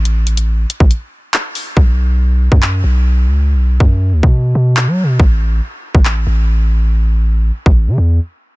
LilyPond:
<<
  \new Staff \with { instrumentName = "808-style bass" } { \clef bass \time 4/4 \key a \mixolydian \tempo 4 = 140 a,,4. r16 a,,16 r2 | b,,4.~ b,,16 fis,8. b,,4 cis,8~ | cis,32 b,,8~ b,,32 fis,8. d,16 b,8. b,8. fis16. b,16. | a,,4 r8. a,,8. a,,4.~ |
a,,4. r16 a,,8 cis16 e,8 r4 | }
  \new DrumStaff \with { instrumentName = "Drums" } \drummode { \time 4/4 hh8 hh16 hh16 r8 hh16 bd16 hh4 <hc hh>8 hho8 | bd4 r8. bd16 hc4 r4 | r8. bd16 r8. bd16 r4 hc4 | bd4 r8. bd16 hc4 r4 |
r4 r8. bd16 r4 r4 | }
>>